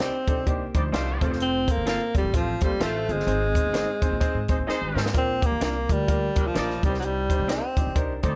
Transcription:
0.00 C4 D4 D#4 G4 C5 D5 G5, snare
0.27 A#1 C4 D4 D#4 G4 A4 C5, kick, closed hi-hat
0.37 C2
0.46 A#3 D4 D#4 G4 C5, kick, closed hi-hat
0.74 D2 F3 G3 D4 D#4 G4 C5 D5, kick, closed hi-hat
0.92 C2 A3 D4 D#4 F4 G4 C5 D5 G5, snare, closed hi-hat
1.21 F1 C4 F4 A4 C5, kick, closed hi-hat
1.33 snare
1.40 C4, closed hi-hat
1.67 A#3 C4 F4 A4 C5, kick, closed hi-hat
1.78 G1
1.86 A#3 C4 F4 A4 C5 F5, snare, closed hi-hat
2.15 F1 G3 C4 F4 A4 D5, kick, closed hi-hat
2.24 A1
2.33 F3 C4 F4 A4 C5, kick, closed hi-hat
2.61 A#1 G3 A3 C4 F4 A4 C5, kick, closed hi-hat
2.80 A1 A3 C4 F4 A4 C5 F5, snare, closed hi-hat
3.09 G1 G#3 C4 F4 A4 C5, closed hi-hat
3.20 snare
3.27 G#1 G#2 C4 D#4 G#4 C5, closed hi-hat
3.55 C4 D#4 G#4 C5, kick, closed hi-hat
3.65 G1
3.73 C4 D#4 G#4 C5 D#5, snare, closed hi-hat
4.02 G#1 C4 D#4 G#4 C5, kick, closed hi-hat
4.11 A#1
4.20 C4 D#4 G#4 C5, kick, closed hi-hat
4.34 G#2
4.48 G#1 G#3 C4 D#4 G#4 C5, kick, closed hi-hat
4.58 A#1
4.67 G#3 C4 D#4 G#4 C5 D#5, muted upright bass stroke, snare
4.81 G#1
4.95 G#2 C4 D#4 G#4 C5, snare
5.06 snare
5.14 A#1 A#2 A#3 D4 F4 A#4, kick, closed hi-hat
5.18 C4
5.41 A#3 D4 F4 G4, kick, closed hi-hat
5.46 A#3
5.52 A1
5.60 C2 A#3 D4 F4 A#4 D5, snare, closed hi-hat
5.89 D2 G3 A#3 D4 F4 A#4, kick, closed hi-hat
6.08 A#3 D4 F4 A#4, kick, closed hi-hat
6.35 C2 F3 A#3 D4 F4 A#4, kick, closed hi-hat
6.47 F3
6.54 A#1 G3 A#3 D4 D#4 F4 A#4 D5, snare, closed hi-hat
6.70 snare
6.83 C2 C3 G3 D4 D#4 G4 A#4, kick, closed hi-hat
6.89 C5
6.94 snare
6.99 F#3, closed hi-hat
7.05 G3
7.30 D4 D#4 G4 C5, kick, closed hi-hat
7.39 C2
7.48 C4 D4 D#4 G4 C5 D5, snare, closed hi-hat
7.77 A#1 D4 D#4 G4 C5, kick, closed hi-hat
7.87 C2
7.95 D4 D#4 G4 A#4 C5, kick, closed hi-hat
8.23 D2 G3 C4 D4 D#4 G4 A4 C5 D5, kick, closed hi-hat

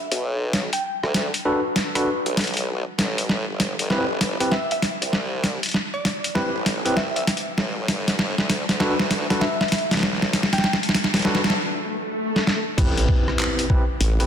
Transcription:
0.11 B1, closed hi-hat
0.53 snare, closed hi-hat
0.73 G5, closed hi-hat
1.03 D2, cross-stick
1.14 D2, snare, closed hi-hat
1.34 closed hi-hat
1.45 D4 F#4 A4 B4
1.76 snare, closed hi-hat
1.95 D4 F#4 A4 B4, cross-stick, closed hi-hat
2.26 B1, closed hi-hat
2.37 snare, closed hi-hat
2.41 closed hi-hat
2.44 closed hi-hat
2.47 closed hi-hat
2.54 closed hi-hat
2.57 closed hi-hat
2.98 A1, snare, closed hi-hat
3.18 closed hi-hat
3.29 snare
3.48 G1
3.60 snare, closed hi-hat
3.79 G1, closed hi-hat
3.90 C4 E4 G4 B4, snare
4.21 snare, closed hi-hat
4.40 C4 E4 G4 B4, closed hi-hat
4.52 E5, snare
4.71 E5, closed hi-hat
4.82 snare, closed hi-hat
5.02 C2, closed hi-hat
5.13 snare
5.44 snare, closed hi-hat
5.63 closed hi-hat
5.66 closed hi-hat
5.69 closed hi-hat
5.71 snare, closed hi-hat
5.94 D5
6.05 snare, closed hi-hat
6.24 closed hi-hat
6.35 C4 E4 G4 B4, snare
6.55 A1
6.66 snare, closed hi-hat
6.85 C4 E4 G4 B4, closed hi-hat
6.96 C2 E5, snare
7.16 E5, closed hi-hat
7.27 snare, closed hi-hat
7.37 closed hi-hat
7.57 A1, snare
7.88 G1, snare, closed hi-hat
8.08 snare, closed hi-hat
8.19 snare
8.38 D2, snare
8.50 snare, closed hi-hat
8.69 D2, snare, closed hi-hat
8.80 D4 F#4 A4 B4, snare
8.99 snare
9.11 snare, closed hi-hat
9.30 D4 F#4 A4 B4, snare, closed hi-hat
9.41 E5, snare
9.61 E5, snare, closed hi-hat
9.68 snare, closed hi-hat
9.72 closed hi-hat
9.78 closed hi-hat
9.91 B1, snare, closed hi-hat
9.93 snare, closed hi-hat
9.97 snare, closed hi-hat
9.99 snare, closed hi-hat
10.01 snare, closed hi-hat
10.08 snare
10.13 snare
10.17 snare
10.22 snare
10.33 snare, closed hi-hat
10.43 snare
10.53 G5, snare, closed hi-hat
10.58 snare
10.64 snare
10.73 snare
10.83 closed hi-hat
10.89 snare
10.94 snare, closed hi-hat
11.04 snare
11.14 B1, snare, closed hi-hat
11.16 snare, closed hi-hat
11.19 closed hi-hat
11.22 D4 F#4 A4 B4, snare, closed hi-hat
11.35 snare
11.44 snare, closed hi-hat
11.50 snare
11.55 swell
12.36 snare
12.47 snare
12.78 A1 C4 E4 G4 B4, kick, closed hi-hat, crash, impact
12.97 closed hi-hat
13.09 kick
13.28 cross-stick
13.39 clap, closed hi-hat
13.59 closed hi-hat
13.70 C4 E4 G4 B4, kick
14.00 A1, closed hi-hat
14.20 C4 E4 G4 B4, closed hi-hat

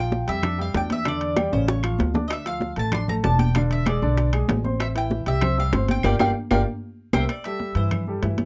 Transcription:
Already playing: A#1 F3 F4 F5 G5
0.12 high bongo, high conga, low timbale
0.27 F2 G3 G4 E5 G5, high bongo, high timbale
0.43 D4 D5 D6, high bongo, high conga, low conga, high timbale, claves
0.58 G3 G4 F5 G5, high bongo, high conga
0.74 E2 D4 D5 G5 D6, high bongo, low bongo, high conga, high timbale, low timbale
0.90 E5, high bongo, high conga, high timbale
1.05 D3 D4 D5, high bongo, high timbale, claves
1.21 high conga, high timbale
1.36 G3 G4 G5, high bongo, high conga, high timbale, low timbale, claves
1.52 A1 C#3 C#4 C5 C#5, high bongo, high conga
1.68 C#5, high bongo, high conga, high timbale
1.83 F3 F4 F5, high conga, high timbale, claves
1.99 D2, high conga, high timbale, low timbale
2.14 D4 D5 D6, low bongo, high conga
2.28 D#5, high bongo, high timbale, claves
2.33 E5
2.45 F3 F4 F5, high conga, high timbale
2.60 high bongo, high conga, low timbale
2.76 A1 A3 A4 A5, high bongo, high timbale
2.92 D4 D5 C6 D6, high bongo, high conga, low conga, high timbale, claves
3.08 A3 A4 A5 A#5, high bongo, high conga, low conga
3.23 E1 D4 D5 A5 D6, high bongo, low bongo, high conga, high timbale, low timbale
3.39 G5, high bongo, high conga, high timbale
3.55 D3 D4 D5 F5, high bongo, high conga, high timbale, claves
3.70 E5, high conga, high timbale
3.86 G#3 G#4 D5 G#5, high bongo, high conga, high timbale, low timbale, claves
4.02 B1 D3 D4 D5, high bongo, high conga
4.18 high bongo, high conga, high timbale
4.33 G#3 G#4 G#5, high bongo, high conga, high timbale, claves
4.48 A1, high bongo, low bongo, high conga, high timbale, low timbale
4.64 C4 C5 C6, high conga
4.80 E5, high bongo, high conga, high timbale, claves
4.95 E3 E4 E5 G5, high conga, high timbale
5.10 high bongo, high conga, low timbale
5.26 C2 G3 G4 E5 G5, high bongo, high timbale
5.41 C4 C5 C6, high bongo, high conga, low conga, high timbale, claves
5.57 G3 G4 F5 G5, high bongo, high conga
5.73 G1 C4 C5 C6, high bongo, low bongo, high conga, high timbale, low timbale
5.88 G5, high bongo, high conga, high timbale
6.03 G1 F4 G4 A#4 D5 F5 G5, high bongo, high conga, high timbale, claves
6.19 G1 F4 G4 A#4 D5 F5 G5, high bongo, high conga, high timbale, claves
6.51 G1 F4 G4 A#4 D5 F5 G5, high bongo, high conga, high timbale, claves
7.13 C2 G4 A#4 C5 E5 G5, high bongo, high conga, high timbale, claves
7.29 D5, high conga, high timbale, claves
7.44 G3 G4 A4 E5, high conga, high timbale
7.59 high conga, low timbale
7.75 G2 E3 E4 C5 E5, high timbale
7.91 high conga, low conga, high timbale, claves
8.07 G3 G4 A4, high conga
8.23 G2 E3 E4 E5, high conga, high timbale, low timbale
8.38 high conga, high timbale

